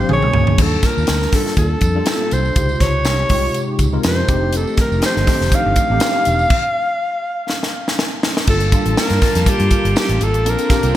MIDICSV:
0, 0, Header, 1, 7, 480
1, 0, Start_track
1, 0, Tempo, 493421
1, 567, Time_signature, 4, 2, 24, 8
1, 10668, End_track
2, 0, Start_track
2, 0, Title_t, "Alto saxophone"
2, 0, Program_c, 0, 65
2, 129, Note_on_c, 0, 73, 101
2, 602, Note_on_c, 0, 69, 87
2, 617, Note_off_c, 0, 73, 0
2, 831, Note_on_c, 0, 70, 94
2, 846, Note_off_c, 0, 69, 0
2, 1307, Note_on_c, 0, 69, 84
2, 1322, Note_off_c, 0, 70, 0
2, 1530, Note_off_c, 0, 69, 0
2, 1535, Note_on_c, 0, 69, 85
2, 2267, Note_on_c, 0, 72, 91
2, 2281, Note_off_c, 0, 69, 0
2, 2739, Note_on_c, 0, 73, 90
2, 2754, Note_off_c, 0, 72, 0
2, 3695, Note_off_c, 0, 73, 0
2, 3962, Note_on_c, 0, 72, 88
2, 4442, Note_on_c, 0, 69, 87
2, 4456, Note_off_c, 0, 72, 0
2, 4666, Note_off_c, 0, 69, 0
2, 4680, Note_on_c, 0, 70, 84
2, 4890, Note_off_c, 0, 70, 0
2, 4922, Note_on_c, 0, 72, 100
2, 5399, Note_on_c, 0, 77, 108
2, 5414, Note_off_c, 0, 72, 0
2, 7784, Note_off_c, 0, 77, 0
2, 8266, Note_on_c, 0, 69, 84
2, 8704, Note_off_c, 0, 69, 0
2, 8748, Note_on_c, 0, 70, 98
2, 9238, Note_on_c, 0, 67, 91
2, 9252, Note_off_c, 0, 70, 0
2, 9702, Note_off_c, 0, 67, 0
2, 9719, Note_on_c, 0, 67, 84
2, 9957, Note_on_c, 0, 69, 91
2, 9972, Note_off_c, 0, 67, 0
2, 10210, Note_on_c, 0, 70, 96
2, 10225, Note_off_c, 0, 69, 0
2, 10668, Note_off_c, 0, 70, 0
2, 10668, End_track
3, 0, Start_track
3, 0, Title_t, "Tine electric piano"
3, 0, Program_c, 1, 4
3, 0, Control_c, 1, 64, 127
3, 0, Note_on_c, 1, 53, 79
3, 0, Note_on_c, 1, 58, 74
3, 0, Note_on_c, 1, 60, 74
3, 0, Note_on_c, 1, 62, 72
3, 0, Note_on_c, 1, 67, 83
3, 0, Note_on_c, 1, 77, 62
3, 86, Note_on_c, 1, 54, 86
3, 89, Note_off_c, 1, 58, 0
3, 89, Note_on_c, 1, 58, 82
3, 89, Note_on_c, 1, 61, 78
3, 90, Note_on_c, 1, 80, 68
3, 96, Note_off_c, 1, 62, 0
3, 96, Note_on_c, 1, 62, 77
3, 97, Note_on_c, 1, 68, 94
3, 100, Note_off_c, 1, 77, 0
3, 100, Control_c, 1, 64, 0
3, 105, Note_off_c, 1, 53, 0
3, 108, Note_off_c, 1, 60, 0
3, 110, Note_off_c, 1, 67, 0
3, 268, Control_c, 1, 64, 127
3, 479, Note_off_c, 1, 54, 0
3, 480, Note_off_c, 1, 58, 0
3, 480, Note_off_c, 1, 61, 0
3, 484, Note_off_c, 1, 62, 0
3, 484, Note_off_c, 1, 68, 0
3, 536, Note_off_c, 1, 80, 0
3, 575, Note_on_c, 1, 55, 64
3, 576, Note_on_c, 1, 58, 57
3, 576, Note_on_c, 1, 62, 59
3, 578, Note_on_c, 1, 65, 59
3, 579, Control_c, 1, 64, 0
3, 586, Note_on_c, 1, 81, 70
3, 745, Control_c, 1, 64, 127
3, 1136, Note_off_c, 1, 55, 0
3, 1136, Note_off_c, 1, 58, 0
3, 1136, Note_off_c, 1, 62, 0
3, 1137, Note_off_c, 1, 65, 0
3, 1141, Note_off_c, 1, 81, 0
3, 1289, Note_on_c, 1, 55, 64
3, 1292, Note_on_c, 1, 58, 61
3, 1295, Note_on_c, 1, 62, 60
3, 1298, Note_on_c, 1, 65, 62
3, 1302, Note_on_c, 1, 69, 73
3, 1755, Note_off_c, 1, 55, 0
3, 1756, Note_off_c, 1, 58, 0
3, 1758, Note_off_c, 1, 62, 0
3, 1760, Note_off_c, 1, 65, 0
3, 1762, Note_off_c, 1, 69, 0
3, 1898, Note_on_c, 1, 55, 68
3, 1899, Note_on_c, 1, 58, 65
3, 1900, Note_on_c, 1, 62, 58
3, 1905, Note_on_c, 1, 65, 65
3, 1908, Note_on_c, 1, 69, 74
3, 2362, Note_off_c, 1, 55, 0
3, 2363, Note_off_c, 1, 58, 0
3, 2363, Note_off_c, 1, 62, 0
3, 2366, Note_off_c, 1, 65, 0
3, 2367, Note_off_c, 1, 69, 0
3, 2490, Note_on_c, 1, 48, 58
3, 2491, Note_on_c, 1, 56, 64
3, 2491, Note_on_c, 1, 63, 61
3, 2493, Note_on_c, 1, 65, 61
3, 2500, Control_c, 1, 64, 0
3, 2501, Note_on_c, 1, 67, 74
3, 2695, Control_c, 1, 64, 127
3, 3054, Note_off_c, 1, 48, 0
3, 3054, Note_off_c, 1, 56, 0
3, 3054, Note_off_c, 1, 63, 0
3, 3056, Note_off_c, 1, 65, 0
3, 3060, Note_off_c, 1, 67, 0
3, 3205, Note_on_c, 1, 48, 60
3, 3205, Note_on_c, 1, 56, 66
3, 3210, Note_on_c, 1, 63, 62
3, 3213, Note_on_c, 1, 65, 58
3, 3215, Note_on_c, 1, 67, 74
3, 3673, Note_off_c, 1, 56, 0
3, 3674, Note_off_c, 1, 48, 0
3, 3676, Note_off_c, 1, 63, 0
3, 3678, Note_off_c, 1, 65, 0
3, 3679, Note_off_c, 1, 67, 0
3, 3816, Note_on_c, 1, 56, 67
3, 3818, Note_on_c, 1, 60, 64
3, 3820, Note_on_c, 1, 63, 63
3, 3824, Note_on_c, 1, 65, 63
3, 3827, Note_on_c, 1, 70, 80
3, 4149, Note_off_c, 1, 56, 0
3, 4151, Note_off_c, 1, 60, 0
3, 4157, Note_off_c, 1, 63, 0
3, 4160, Note_on_c, 1, 56, 55
3, 4162, Note_on_c, 1, 60, 69
3, 4167, Note_on_c, 1, 62, 62
3, 4169, Note_on_c, 1, 63, 66
3, 4172, Note_off_c, 1, 65, 0
3, 4174, Note_off_c, 1, 70, 0
3, 4176, Note_on_c, 1, 67, 81
3, 4183, Control_c, 1, 64, 0
3, 4220, Note_on_c, 1, 57, 76
3, 4228, Note_off_c, 1, 56, 0
3, 4345, Control_c, 1, 64, 127
3, 4938, Note_off_c, 1, 60, 0
3, 4941, Note_off_c, 1, 62, 0
3, 4942, Note_off_c, 1, 63, 0
3, 4945, Note_off_c, 1, 67, 0
3, 4967, Note_off_c, 1, 57, 0
3, 5118, Note_on_c, 1, 57, 70
3, 5124, Note_on_c, 1, 60, 64
3, 5125, Note_on_c, 1, 62, 65
3, 5128, Note_on_c, 1, 63, 66
3, 5128, Note_on_c, 1, 67, 74
3, 5591, Note_off_c, 1, 57, 0
3, 5593, Note_off_c, 1, 60, 0
3, 5594, Note_off_c, 1, 62, 0
3, 5595, Note_off_c, 1, 63, 0
3, 5596, Note_off_c, 1, 67, 0
3, 5738, Note_on_c, 1, 57, 68
3, 5740, Note_on_c, 1, 60, 62
3, 5740, Note_on_c, 1, 62, 63
3, 5746, Note_on_c, 1, 63, 62
3, 5749, Note_on_c, 1, 67, 76
3, 6202, Note_off_c, 1, 57, 0
3, 6204, Note_off_c, 1, 60, 0
3, 6204, Note_off_c, 1, 62, 0
3, 6207, Note_off_c, 1, 63, 0
3, 6208, Note_off_c, 1, 67, 0
3, 6345, Control_c, 1, 64, 0
3, 8239, Note_on_c, 1, 55, 66
3, 8244, Note_on_c, 1, 58, 62
3, 8246, Note_on_c, 1, 62, 62
3, 8247, Note_on_c, 1, 65, 61
3, 8251, Note_on_c, 1, 69, 72
3, 8434, Note_off_c, 1, 55, 0
3, 8437, Note_off_c, 1, 58, 0
3, 8437, Note_off_c, 1, 62, 0
3, 8438, Note_off_c, 1, 65, 0
3, 8438, Control_c, 1, 64, 127
3, 8440, Note_off_c, 1, 69, 0
3, 8485, Note_on_c, 1, 55, 67
3, 8486, Note_on_c, 1, 58, 63
3, 8488, Note_on_c, 1, 62, 63
3, 8491, Note_on_c, 1, 65, 67
3, 8495, Note_on_c, 1, 81, 77
3, 9232, Note_off_c, 1, 55, 0
3, 9232, Note_off_c, 1, 58, 0
3, 9233, Note_off_c, 1, 62, 0
3, 9235, Note_off_c, 1, 65, 0
3, 9237, Note_off_c, 1, 81, 0
3, 10166, Note_on_c, 1, 58, 69
3, 10167, Note_on_c, 1, 60, 63
3, 10170, Note_on_c, 1, 62, 63
3, 10170, Note_on_c, 1, 65, 62
3, 10175, Note_on_c, 1, 69, 76
3, 10179, Control_c, 1, 64, 0
3, 10356, Note_off_c, 1, 58, 0
3, 10356, Note_off_c, 1, 60, 0
3, 10358, Note_off_c, 1, 62, 0
3, 10358, Note_off_c, 1, 65, 0
3, 10361, Note_off_c, 1, 69, 0
3, 10364, Control_c, 1, 64, 127
3, 10398, Note_on_c, 1, 58, 71
3, 10402, Note_on_c, 1, 60, 69
3, 10408, Note_on_c, 1, 62, 66
3, 10408, Note_on_c, 1, 65, 70
3, 10413, Note_on_c, 1, 67, 76
3, 10668, Note_off_c, 1, 58, 0
3, 10668, Note_off_c, 1, 60, 0
3, 10668, Note_off_c, 1, 62, 0
3, 10668, Note_off_c, 1, 65, 0
3, 10668, Note_off_c, 1, 67, 0
3, 10668, End_track
4, 0, Start_track
4, 0, Title_t, "String section"
4, 0, Program_c, 2, 48
4, 4409, Note_on_c, 2, 57, 89
4, 4410, Note_on_c, 2, 51, 83
4, 4415, Note_on_c, 2, 53, 72
4, 6311, Note_off_c, 2, 51, 0
4, 6311, Note_off_c, 2, 57, 0
4, 6314, Note_off_c, 2, 53, 0
4, 8259, Note_on_c, 2, 58, 83
4, 8259, Note_on_c, 2, 81, 74
4, 8260, Note_on_c, 2, 55, 85
4, 8263, Note_on_c, 2, 65, 73
4, 10152, Note_off_c, 2, 58, 0
4, 10152, Note_off_c, 2, 81, 0
4, 10153, Note_off_c, 2, 55, 0
4, 10154, Note_off_c, 2, 65, 0
4, 10164, Note_on_c, 2, 58, 77
4, 10168, Note_on_c, 2, 60, 80
4, 10168, Note_on_c, 2, 62, 90
4, 10668, Note_off_c, 2, 58, 0
4, 10668, Note_off_c, 2, 60, 0
4, 10668, Note_off_c, 2, 62, 0
4, 10668, End_track
5, 0, Start_track
5, 0, Title_t, "Fingered electric bass"
5, 0, Program_c, 3, 33
5, 96, Note_on_c, 3, 34, 90
5, 225, Note_off_c, 3, 34, 0
5, 225, Note_on_c, 3, 36, 76
5, 300, Note_off_c, 3, 36, 0
5, 335, Note_on_c, 3, 37, 77
5, 424, Note_off_c, 3, 37, 0
5, 469, Note_on_c, 3, 38, 77
5, 542, Note_off_c, 3, 38, 0
5, 567, Note_on_c, 3, 39, 94
5, 736, Note_off_c, 3, 39, 0
5, 946, Note_on_c, 3, 39, 85
5, 1021, Note_off_c, 3, 39, 0
5, 1059, Note_on_c, 3, 38, 77
5, 1224, Note_off_c, 3, 38, 0
5, 1527, Note_on_c, 3, 39, 89
5, 1697, Note_off_c, 3, 39, 0
5, 1766, Note_on_c, 3, 41, 82
5, 1936, Note_off_c, 3, 41, 0
5, 2258, Note_on_c, 3, 36, 89
5, 2424, Note_off_c, 3, 36, 0
5, 2491, Note_on_c, 3, 37, 102
5, 2660, Note_off_c, 3, 37, 0
5, 2732, Note_on_c, 3, 37, 93
5, 2976, Note_off_c, 3, 37, 0
5, 2976, Note_on_c, 3, 36, 85
5, 3143, Note_off_c, 3, 36, 0
5, 3208, Note_on_c, 3, 36, 80
5, 3378, Note_off_c, 3, 36, 0
5, 3686, Note_on_c, 3, 37, 92
5, 3857, Note_off_c, 3, 37, 0
5, 3936, Note_on_c, 3, 41, 87
5, 4103, Note_off_c, 3, 41, 0
5, 4170, Note_on_c, 3, 29, 80
5, 4508, Note_off_c, 3, 29, 0
5, 4782, Note_on_c, 3, 29, 94
5, 4859, Note_off_c, 3, 29, 0
5, 5027, Note_on_c, 3, 31, 90
5, 5102, Note_off_c, 3, 31, 0
5, 5264, Note_on_c, 3, 29, 85
5, 5341, Note_off_c, 3, 29, 0
5, 5505, Note_on_c, 3, 31, 77
5, 5581, Note_off_c, 3, 31, 0
5, 5740, Note_on_c, 3, 33, 76
5, 5818, Note_off_c, 3, 33, 0
5, 6097, Note_on_c, 3, 28, 77
5, 6264, Note_off_c, 3, 28, 0
5, 8247, Note_on_c, 3, 31, 104
5, 8508, Note_off_c, 3, 31, 0
5, 8617, Note_on_c, 3, 33, 87
5, 8695, Note_off_c, 3, 33, 0
5, 8855, Note_on_c, 3, 43, 94
5, 8934, Note_off_c, 3, 43, 0
5, 9100, Note_on_c, 3, 41, 87
5, 9177, Note_off_c, 3, 41, 0
5, 9336, Note_on_c, 3, 43, 98
5, 9414, Note_off_c, 3, 43, 0
5, 9579, Note_on_c, 3, 31, 91
5, 9656, Note_off_c, 3, 31, 0
5, 9817, Note_on_c, 3, 33, 86
5, 9894, Note_off_c, 3, 33, 0
5, 9932, Note_on_c, 3, 32, 80
5, 10060, Note_off_c, 3, 32, 0
5, 10060, Note_on_c, 3, 33, 90
5, 10171, Note_off_c, 3, 33, 0
5, 10171, Note_on_c, 3, 34, 103
5, 10261, Note_off_c, 3, 34, 0
5, 10540, Note_on_c, 3, 36, 78
5, 10616, Note_off_c, 3, 36, 0
5, 10668, End_track
6, 0, Start_track
6, 0, Title_t, "Muted fingered electric bass strokes"
6, 9207, Note_on_c, 9, 29, 47
6, 9305, Note_off_c, 9, 29, 0
6, 10668, End_track
7, 0, Start_track
7, 0, Title_t, "Drums"
7, 88, Note_on_c, 9, 47, 78
7, 185, Note_off_c, 9, 47, 0
7, 218, Note_on_c, 9, 45, 65
7, 315, Note_off_c, 9, 45, 0
7, 326, Note_on_c, 9, 43, 87
7, 423, Note_off_c, 9, 43, 0
7, 458, Note_on_c, 9, 43, 79
7, 555, Note_off_c, 9, 43, 0
7, 566, Note_on_c, 9, 49, 90
7, 568, Note_on_c, 9, 36, 105
7, 572, Note_on_c, 9, 54, 51
7, 663, Note_off_c, 9, 49, 0
7, 665, Note_off_c, 9, 36, 0
7, 669, Note_off_c, 9, 54, 0
7, 805, Note_on_c, 9, 42, 75
7, 807, Note_on_c, 9, 36, 83
7, 810, Note_on_c, 9, 38, 32
7, 815, Note_on_c, 9, 54, 45
7, 903, Note_off_c, 9, 42, 0
7, 904, Note_off_c, 9, 36, 0
7, 907, Note_off_c, 9, 38, 0
7, 912, Note_off_c, 9, 54, 0
7, 950, Note_on_c, 9, 54, 31
7, 1041, Note_on_c, 9, 42, 79
7, 1048, Note_off_c, 9, 54, 0
7, 1048, Note_on_c, 9, 38, 86
7, 1057, Note_on_c, 9, 54, 69
7, 1139, Note_off_c, 9, 42, 0
7, 1146, Note_off_c, 9, 38, 0
7, 1154, Note_off_c, 9, 54, 0
7, 1186, Note_on_c, 9, 38, 35
7, 1284, Note_off_c, 9, 38, 0
7, 1287, Note_on_c, 9, 46, 68
7, 1291, Note_on_c, 9, 36, 81
7, 1294, Note_on_c, 9, 38, 31
7, 1295, Note_on_c, 9, 54, 42
7, 1385, Note_off_c, 9, 46, 0
7, 1388, Note_off_c, 9, 36, 0
7, 1391, Note_off_c, 9, 38, 0
7, 1393, Note_off_c, 9, 54, 0
7, 1424, Note_on_c, 9, 38, 33
7, 1521, Note_off_c, 9, 38, 0
7, 1526, Note_on_c, 9, 36, 84
7, 1527, Note_on_c, 9, 42, 90
7, 1543, Note_on_c, 9, 54, 48
7, 1623, Note_off_c, 9, 36, 0
7, 1624, Note_off_c, 9, 42, 0
7, 1641, Note_off_c, 9, 54, 0
7, 1759, Note_on_c, 9, 42, 70
7, 1766, Note_on_c, 9, 36, 80
7, 1775, Note_on_c, 9, 54, 50
7, 1856, Note_off_c, 9, 42, 0
7, 1863, Note_off_c, 9, 36, 0
7, 1873, Note_off_c, 9, 54, 0
7, 2001, Note_on_c, 9, 42, 86
7, 2006, Note_on_c, 9, 54, 72
7, 2011, Note_on_c, 9, 38, 114
7, 2098, Note_off_c, 9, 42, 0
7, 2103, Note_off_c, 9, 54, 0
7, 2108, Note_off_c, 9, 38, 0
7, 2251, Note_on_c, 9, 42, 74
7, 2255, Note_on_c, 9, 54, 43
7, 2348, Note_off_c, 9, 42, 0
7, 2353, Note_off_c, 9, 54, 0
7, 2382, Note_on_c, 9, 54, 30
7, 2480, Note_off_c, 9, 54, 0
7, 2488, Note_on_c, 9, 42, 90
7, 2489, Note_on_c, 9, 54, 52
7, 2491, Note_on_c, 9, 36, 111
7, 2586, Note_off_c, 9, 42, 0
7, 2586, Note_off_c, 9, 54, 0
7, 2588, Note_off_c, 9, 36, 0
7, 2615, Note_on_c, 9, 54, 35
7, 2712, Note_off_c, 9, 54, 0
7, 2728, Note_on_c, 9, 36, 82
7, 2731, Note_on_c, 9, 42, 83
7, 2734, Note_on_c, 9, 54, 44
7, 2735, Note_on_c, 9, 38, 33
7, 2825, Note_off_c, 9, 36, 0
7, 2828, Note_off_c, 9, 42, 0
7, 2831, Note_off_c, 9, 54, 0
7, 2832, Note_off_c, 9, 38, 0
7, 2964, Note_on_c, 9, 42, 74
7, 2971, Note_on_c, 9, 38, 84
7, 2971, Note_on_c, 9, 54, 72
7, 3061, Note_off_c, 9, 42, 0
7, 3068, Note_off_c, 9, 38, 0
7, 3068, Note_off_c, 9, 54, 0
7, 3204, Note_on_c, 9, 46, 63
7, 3209, Note_on_c, 9, 36, 86
7, 3211, Note_on_c, 9, 54, 42
7, 3301, Note_off_c, 9, 46, 0
7, 3307, Note_off_c, 9, 36, 0
7, 3308, Note_off_c, 9, 54, 0
7, 3448, Note_on_c, 9, 42, 85
7, 3458, Note_on_c, 9, 54, 45
7, 3545, Note_off_c, 9, 42, 0
7, 3555, Note_off_c, 9, 54, 0
7, 3685, Note_on_c, 9, 42, 71
7, 3688, Note_on_c, 9, 36, 81
7, 3691, Note_on_c, 9, 54, 51
7, 3782, Note_off_c, 9, 42, 0
7, 3785, Note_off_c, 9, 36, 0
7, 3789, Note_off_c, 9, 54, 0
7, 3925, Note_on_c, 9, 42, 89
7, 3929, Note_on_c, 9, 54, 76
7, 3935, Note_on_c, 9, 38, 119
7, 4022, Note_off_c, 9, 42, 0
7, 4026, Note_off_c, 9, 54, 0
7, 4033, Note_off_c, 9, 38, 0
7, 4167, Note_on_c, 9, 42, 75
7, 4169, Note_on_c, 9, 36, 106
7, 4177, Note_on_c, 9, 54, 45
7, 4265, Note_off_c, 9, 42, 0
7, 4267, Note_off_c, 9, 36, 0
7, 4274, Note_off_c, 9, 54, 0
7, 4402, Note_on_c, 9, 42, 88
7, 4414, Note_on_c, 9, 54, 51
7, 4500, Note_off_c, 9, 42, 0
7, 4511, Note_off_c, 9, 54, 0
7, 4546, Note_on_c, 9, 54, 35
7, 4643, Note_off_c, 9, 54, 0
7, 4644, Note_on_c, 9, 42, 78
7, 4647, Note_on_c, 9, 36, 90
7, 4648, Note_on_c, 9, 38, 32
7, 4659, Note_on_c, 9, 54, 46
7, 4741, Note_off_c, 9, 42, 0
7, 4744, Note_off_c, 9, 36, 0
7, 4745, Note_off_c, 9, 38, 0
7, 4756, Note_off_c, 9, 54, 0
7, 4786, Note_on_c, 9, 54, 30
7, 4882, Note_on_c, 9, 42, 80
7, 4883, Note_off_c, 9, 54, 0
7, 4889, Note_on_c, 9, 38, 82
7, 4893, Note_on_c, 9, 54, 71
7, 4979, Note_off_c, 9, 42, 0
7, 4987, Note_off_c, 9, 38, 0
7, 4990, Note_off_c, 9, 54, 0
7, 5024, Note_on_c, 9, 38, 36
7, 5121, Note_off_c, 9, 38, 0
7, 5128, Note_on_c, 9, 46, 67
7, 5130, Note_on_c, 9, 36, 91
7, 5134, Note_on_c, 9, 54, 43
7, 5135, Note_on_c, 9, 38, 32
7, 5225, Note_off_c, 9, 46, 0
7, 5227, Note_off_c, 9, 36, 0
7, 5231, Note_off_c, 9, 54, 0
7, 5232, Note_off_c, 9, 38, 0
7, 5264, Note_on_c, 9, 38, 34
7, 5272, Note_on_c, 9, 54, 31
7, 5362, Note_off_c, 9, 38, 0
7, 5367, Note_on_c, 9, 36, 88
7, 5370, Note_off_c, 9, 54, 0
7, 5370, Note_on_c, 9, 42, 85
7, 5381, Note_on_c, 9, 54, 46
7, 5465, Note_off_c, 9, 36, 0
7, 5467, Note_off_c, 9, 42, 0
7, 5478, Note_off_c, 9, 54, 0
7, 5601, Note_on_c, 9, 42, 75
7, 5605, Note_on_c, 9, 54, 51
7, 5606, Note_on_c, 9, 36, 80
7, 5698, Note_off_c, 9, 42, 0
7, 5702, Note_off_c, 9, 54, 0
7, 5703, Note_off_c, 9, 36, 0
7, 5838, Note_on_c, 9, 42, 94
7, 5842, Note_on_c, 9, 54, 80
7, 5849, Note_on_c, 9, 38, 110
7, 5936, Note_off_c, 9, 42, 0
7, 5940, Note_off_c, 9, 54, 0
7, 5946, Note_off_c, 9, 38, 0
7, 6083, Note_on_c, 9, 42, 79
7, 6092, Note_on_c, 9, 54, 44
7, 6180, Note_off_c, 9, 42, 0
7, 6189, Note_off_c, 9, 54, 0
7, 6216, Note_on_c, 9, 54, 33
7, 6313, Note_off_c, 9, 54, 0
7, 6323, Note_on_c, 9, 49, 83
7, 6326, Note_on_c, 9, 36, 98
7, 6420, Note_off_c, 9, 49, 0
7, 6423, Note_off_c, 9, 36, 0
7, 7291, Note_on_c, 9, 38, 55
7, 7389, Note_off_c, 9, 38, 0
7, 7422, Note_on_c, 9, 38, 56
7, 7520, Note_off_c, 9, 38, 0
7, 7664, Note_on_c, 9, 38, 64
7, 7761, Note_off_c, 9, 38, 0
7, 7772, Note_on_c, 9, 38, 87
7, 7869, Note_off_c, 9, 38, 0
7, 8009, Note_on_c, 9, 38, 97
7, 8106, Note_off_c, 9, 38, 0
7, 8142, Note_on_c, 9, 38, 87
7, 8239, Note_off_c, 9, 38, 0
7, 8241, Note_on_c, 9, 49, 93
7, 8246, Note_on_c, 9, 36, 110
7, 8255, Note_on_c, 9, 54, 49
7, 8339, Note_off_c, 9, 49, 0
7, 8343, Note_off_c, 9, 36, 0
7, 8352, Note_off_c, 9, 54, 0
7, 8369, Note_on_c, 9, 42, 54
7, 8379, Note_on_c, 9, 54, 35
7, 8467, Note_off_c, 9, 42, 0
7, 8476, Note_off_c, 9, 54, 0
7, 8485, Note_on_c, 9, 36, 92
7, 8485, Note_on_c, 9, 42, 79
7, 8494, Note_on_c, 9, 54, 47
7, 8582, Note_off_c, 9, 36, 0
7, 8583, Note_off_c, 9, 42, 0
7, 8592, Note_off_c, 9, 54, 0
7, 8616, Note_on_c, 9, 42, 56
7, 8713, Note_off_c, 9, 42, 0
7, 8730, Note_on_c, 9, 38, 93
7, 8734, Note_on_c, 9, 54, 78
7, 8827, Note_off_c, 9, 38, 0
7, 8831, Note_off_c, 9, 54, 0
7, 8851, Note_on_c, 9, 42, 54
7, 8865, Note_on_c, 9, 38, 38
7, 8948, Note_off_c, 9, 42, 0
7, 8962, Note_off_c, 9, 38, 0
7, 8965, Note_on_c, 9, 46, 67
7, 8969, Note_on_c, 9, 36, 85
7, 8972, Note_on_c, 9, 38, 33
7, 8973, Note_on_c, 9, 54, 44
7, 9062, Note_off_c, 9, 46, 0
7, 9066, Note_off_c, 9, 36, 0
7, 9069, Note_off_c, 9, 38, 0
7, 9071, Note_off_c, 9, 54, 0
7, 9098, Note_on_c, 9, 42, 58
7, 9103, Note_on_c, 9, 38, 34
7, 9195, Note_off_c, 9, 42, 0
7, 9200, Note_off_c, 9, 38, 0
7, 9206, Note_on_c, 9, 36, 87
7, 9209, Note_on_c, 9, 42, 89
7, 9222, Note_on_c, 9, 54, 49
7, 9303, Note_off_c, 9, 36, 0
7, 9307, Note_off_c, 9, 42, 0
7, 9319, Note_off_c, 9, 54, 0
7, 9336, Note_on_c, 9, 42, 47
7, 9433, Note_off_c, 9, 42, 0
7, 9443, Note_on_c, 9, 42, 76
7, 9447, Note_on_c, 9, 36, 83
7, 9453, Note_on_c, 9, 54, 50
7, 9540, Note_off_c, 9, 42, 0
7, 9544, Note_off_c, 9, 36, 0
7, 9550, Note_off_c, 9, 54, 0
7, 9584, Note_on_c, 9, 42, 51
7, 9682, Note_off_c, 9, 42, 0
7, 9689, Note_on_c, 9, 54, 82
7, 9696, Note_on_c, 9, 38, 113
7, 9786, Note_off_c, 9, 54, 0
7, 9794, Note_off_c, 9, 38, 0
7, 9818, Note_on_c, 9, 42, 49
7, 9916, Note_off_c, 9, 42, 0
7, 9928, Note_on_c, 9, 54, 47
7, 9931, Note_on_c, 9, 42, 76
7, 10025, Note_off_c, 9, 54, 0
7, 10028, Note_off_c, 9, 42, 0
7, 10060, Note_on_c, 9, 42, 49
7, 10158, Note_off_c, 9, 42, 0
7, 10176, Note_on_c, 9, 42, 92
7, 10179, Note_on_c, 9, 54, 53
7, 10274, Note_off_c, 9, 42, 0
7, 10276, Note_off_c, 9, 54, 0
7, 10298, Note_on_c, 9, 42, 50
7, 10301, Note_on_c, 9, 54, 37
7, 10396, Note_off_c, 9, 42, 0
7, 10398, Note_off_c, 9, 54, 0
7, 10408, Note_on_c, 9, 36, 92
7, 10411, Note_on_c, 9, 42, 83
7, 10415, Note_on_c, 9, 38, 35
7, 10415, Note_on_c, 9, 54, 49
7, 10506, Note_off_c, 9, 36, 0
7, 10508, Note_off_c, 9, 42, 0
7, 10512, Note_off_c, 9, 38, 0
7, 10512, Note_off_c, 9, 54, 0
7, 10536, Note_on_c, 9, 42, 55
7, 10550, Note_on_c, 9, 54, 34
7, 10634, Note_off_c, 9, 42, 0
7, 10647, Note_off_c, 9, 54, 0
7, 10668, End_track
0, 0, End_of_file